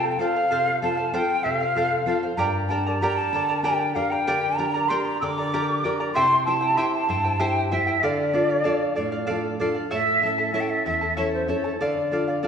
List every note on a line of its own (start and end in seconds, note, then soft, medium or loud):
0.00 0.18 C3 medium
0.00 0.18 C4 soft
0.00 0.18 F4 soft
0.00 0.19 A4 medium
0.00 0.20 C5 medium
0.00 0.20 F5 medium
0.00 0.11 G5 medium
0.11 0.21 G5 medium
0.19 0.69 C4 medium
0.19 0.69 F4 soft
0.19 0.70 A4 medium
0.19 0.35 A4 medium
0.19 0.36 C5 medium
0.19 0.82 F5 medium
0.19 0.35 F5 medium
0.36 0.51 C5 soft
0.36 0.51 F5 medium
0.51 1.12 C3 medium
0.51 0.81 A4 medium
0.51 0.81 C5 medium
0.51 0.82 F5 medium
0.82 1.12 C4 soft
0.82 1.12 F4 soft
0.82 0.98 A4 medium
0.82 1.13 A4 soft
0.82 0.98 C5 medium
0.82 0.96 F5 medium
0.82 1.12 A5 medium
0.97 1.12 C5 soft
0.97 1.13 F5 medium
1.14 1.64 C4 soft
1.14 1.64 F4 soft
1.14 1.43 A4 medium
1.14 1.64 A4 soft
1.14 1.44 C5 medium
1.14 1.45 F5 medium
1.14 1.45 G5 medium
1.43 2.06 C3 medium
1.43 1.60 A4 medium
1.43 1.60 C5 medium
1.43 1.56 E5 medium
1.43 1.60 F5 medium
1.56 2.15 F5 medium
1.61 1.76 C5 soft
1.61 1.76 F5 medium
1.75 2.05 C4 soft
1.75 2.05 F4 soft
1.75 2.06 A4 medium
1.75 2.06 A4 soft
1.75 2.07 C5 medium
1.75 2.08 F5 medium
2.06 2.32 C4 medium
2.06 2.32 F4 soft
2.06 2.32 A4 medium
2.06 2.23 A4 medium
2.06 2.23 C5 medium
2.06 2.22 F5 medium
2.23 2.37 C5 soft
2.23 2.38 F5 medium
2.37 2.99 G2 medium
2.37 2.70 G4 medium
2.37 2.69 A#4 medium
2.37 2.70 D5 medium
2.37 2.69 G5 medium
2.37 2.44 A#5 medium
2.37 2.70 A#5 medium
2.69 3.00 D4 soft
2.69 3.00 G4 soft
2.69 3.01 A#4 medium
2.69 2.86 A#4 medium
2.69 2.86 D5 medium
2.69 2.86 G5 medium
2.69 2.98 A5 medium
2.69 2.85 A#5 medium
2.87 3.02 A#4 soft
2.87 3.02 D5 soft
2.87 3.02 A#5 soft
3.01 3.51 D4 soft
3.01 3.51 G4 soft
3.01 3.33 G4 medium
3.01 3.52 A#4 medium
3.01 3.33 A#4 medium
3.01 3.34 D5 medium
3.01 3.33 G5 medium
3.01 3.15 A#5 loud
3.01 3.34 A#5 medium
3.16 3.60 A5 medium
3.33 3.94 D3 medium
3.33 3.49 A#4 medium
3.33 3.48 D5 medium
3.33 3.49 G5 medium
3.33 3.47 A#5 medium
3.49 3.64 A#4 soft
3.49 3.64 D5 soft
3.49 3.64 A#5 soft
3.63 3.95 D4 soft
3.63 3.95 G4 soft
3.63 3.95 G4 medium
3.63 3.95 A#4 medium
3.63 3.94 A#4 medium
3.63 3.94 D5 medium
3.63 3.97 G5 medium
3.63 3.94 G5 medium
3.63 3.95 A#5 medium
3.95 4.46 D4 medium
3.95 4.46 G4 soft
3.95 4.11 A#4 medium
3.95 4.46 A#4 medium
3.95 4.11 D5 medium
3.95 4.12 F5 medium
3.95 4.11 G5 soft
3.95 4.10 A#5 medium
4.11 4.26 A#4 soft
4.11 4.27 D5 soft
4.11 4.58 G5 medium
4.11 4.27 A#5 soft
4.27 4.88 D3 medium
4.27 4.58 G4 medium
4.27 4.57 A#4 medium
4.27 4.58 D5 medium
4.27 4.57 G5 medium
4.27 4.58 A#5 medium
4.56 4.90 D4 soft
4.56 4.90 G4 soft
4.56 4.74 A#4 medium
4.56 4.90 A#4 soft
4.56 4.74 D5 medium
4.56 4.74 G5 medium
4.56 4.90 A#5 medium
4.56 4.73 A#5 medium
4.74 4.89 A#4 soft
4.74 4.89 D5 soft
4.74 4.89 A#5 medium
4.88 5.40 D4 soft
4.88 5.21 G4 medium
4.88 5.41 G4 soft
4.88 5.21 A#4 medium
4.88 5.41 A#4 medium
4.88 5.21 D5 medium
4.88 5.20 G5 medium
4.88 5.21 A#5 medium
4.88 5.06 C6 medium
5.05 5.20 A#5 medium
5.21 5.82 D3 medium
5.21 5.37 A#4 medium
5.21 5.37 D5 medium
5.21 5.37 G5 medium
5.21 5.37 A#5 medium
5.21 5.87 D6 loud
5.21 5.25 E6 loud
5.38 5.53 A#4 soft
5.38 5.53 D5 soft
5.38 5.53 A#5 medium
5.53 5.83 D4 soft
5.53 5.84 G4 medium
5.53 5.83 G4 soft
5.53 5.84 A#4 medium
5.53 5.84 A#4 soft
5.53 5.84 D5 medium
5.53 5.83 G5 medium
5.53 5.84 A#5 medium
5.84 6.09 D4 medium
5.84 6.09 G4 soft
5.84 6.00 A#4 medium
5.84 6.09 A#4 medium
5.84 5.99 D5 medium
5.84 5.99 G5 medium
5.84 5.99 A#5 medium
6.00 6.16 A#4 soft
6.00 6.15 D5 soft
6.00 6.15 A#5 medium
6.14 6.77 C3 medium
6.14 6.46 E4 medium
6.14 6.46 G4 medium
6.14 6.46 C5 medium
6.14 6.45 E5 medium
6.14 6.47 G5 medium
6.14 6.44 C6 loud
6.45 6.62 E4 medium
6.45 6.78 E4 soft
6.45 6.78 G4 soft
6.45 6.61 C5 medium
6.45 6.78 C5 medium
6.45 6.62 E5 medium
6.45 6.60 G5 medium
6.45 6.78 A5 medium
6.61 6.76 E4 soft
6.61 6.77 C5 soft
6.61 6.77 G5 medium
6.77 7.08 E4 medium
6.77 7.28 E4 soft
6.77 7.09 G4 medium
6.77 7.28 G4 soft
6.77 7.08 C5 medium
6.77 7.29 C5 medium
6.77 7.07 E5 medium
6.77 7.09 G5 medium
6.77 6.92 C6 medium
6.93 7.42 A5 medium
7.08 7.70 G2 medium
7.08 7.25 E4 medium
7.08 7.24 C5 medium
7.08 7.24 E5 medium
7.08 7.23 G5 medium
7.24 7.39 E4 soft
7.24 7.39 C5 soft
7.24 7.40 G5 medium
7.40 7.71 E4 soft
7.40 7.71 E4 medium
7.40 7.71 G4 medium
7.40 7.71 G4 soft
7.40 7.71 C5 medium
7.40 7.70 E5 medium
7.40 7.72 G5 medium
7.40 7.71 G5 medium
7.71 7.87 E4 medium
7.71 7.97 E4 medium
7.71 7.97 G4 soft
7.71 7.87 C5 medium
7.71 7.97 C5 medium
7.71 7.87 E5 medium
7.71 8.06 E5 medium
7.71 7.86 G5 medium
7.87 8.02 E4 soft
7.87 8.03 C5 soft
7.87 8.03 G5 medium
8.03 8.64 D3 medium
8.03 8.32 A4 medium
8.03 8.33 D5 medium
8.03 9.29 D5 medium
8.03 8.34 F5 medium
8.33 8.64 D4 soft
8.33 8.65 F4 soft
8.33 8.49 A4 medium
8.33 8.66 A4 soft
8.33 8.49 D5 medium
8.33 8.48 F5 medium
8.49 8.64 D5 soft
8.49 8.64 F5 soft
8.64 9.15 D4 soft
8.64 9.16 F4 soft
8.64 8.94 A4 medium
8.64 9.16 A4 soft
8.64 8.95 D5 medium
8.64 8.95 F5 medium
8.95 9.58 A2 medium
8.95 9.12 A4 medium
8.95 9.12 D5 medium
8.95 9.11 F5 medium
9.12 9.26 D5 soft
9.12 9.26 F5 medium
9.27 9.58 D4 soft
9.27 9.59 F4 soft
9.27 9.58 A4 medium
9.27 9.60 A4 soft
9.27 9.59 D5 medium
9.27 9.59 F5 medium
9.59 9.85 D4 medium
9.59 9.85 F4 soft
9.59 9.75 A4 medium
9.59 9.86 A4 medium
9.59 9.74 D5 medium
9.59 9.73 F5 medium
9.74 9.90 D5 soft
9.74 9.91 F5 medium
9.91 10.52 A2 medium
9.91 10.21 E4 medium
9.91 10.21 A4 medium
9.91 10.22 C#5 medium
9.91 10.21 E5 medium
9.91 10.21 E5 loud
9.91 10.22 A5 medium
10.22 10.52 C#4 soft
10.22 10.38 E4 medium
10.22 10.52 E4 soft
10.22 10.37 A4 medium
10.22 10.53 A4 medium
10.22 10.38 E5 medium
10.22 10.53 E5 medium
10.22 10.37 A5 medium
10.38 10.54 E4 soft
10.38 10.54 A4 soft
10.38 10.54 A5 medium
10.53 11.04 C#4 soft
10.53 11.04 E4 soft
10.53 10.85 E4 medium
10.53 11.04 A4 soft
10.53 10.86 A4 medium
10.53 10.85 C#5 medium
10.53 10.84 E5 medium
10.53 10.62 E5 medium
10.53 10.86 A5 medium
10.60 10.71 G5 medium
10.70 10.86 E5 medium
10.86 11.46 E2 medium
10.86 11.01 E4 medium
10.86 11.01 A4 medium
10.86 11.01 E5 medium
10.86 11.15 E5 medium
10.86 11.00 A5 medium
11.01 11.16 E4 soft
11.01 11.17 A4 soft
11.01 11.17 A5 soft
11.17 11.47 C#4 soft
11.17 11.47 E4 medium
11.17 11.48 E4 soft
11.17 11.48 A4 medium
11.17 11.48 A4 soft
11.17 11.48 C#5 medium
11.17 11.32 C#5 medium
11.17 11.47 E5 medium
11.17 11.48 A5 medium
11.34 11.50 C5 medium
11.48 11.73 C#4 medium
11.48 11.64 E4 medium
11.48 11.74 E4 soft
11.48 11.64 A4 medium
11.48 11.74 A4 medium
11.48 11.80 C#5 medium
11.48 11.64 E5 soft
11.48 11.63 A5 medium
11.64 11.80 E4 soft
11.64 11.79 A4 soft
11.64 11.79 A5 soft
11.80 12.41 D3 medium
11.80 12.11 A4 medium
11.80 12.46 D5 medium
11.80 12.11 D5 medium
11.80 12.12 F5 medium
12.11 12.42 D4 soft
12.11 12.42 F4 soft
12.11 12.27 A4 medium
12.11 12.43 A4 soft
12.11 12.27 D5 medium
12.11 12.26 F5 medium
12.28 12.42 D5 soft
12.28 12.43 F5 medium
12.43 12.48 D4 soft
12.43 12.48 F4 soft
12.43 12.48 A4 medium
12.43 12.48 A4 soft
12.43 12.48 D5 medium
12.43 12.48 F5 medium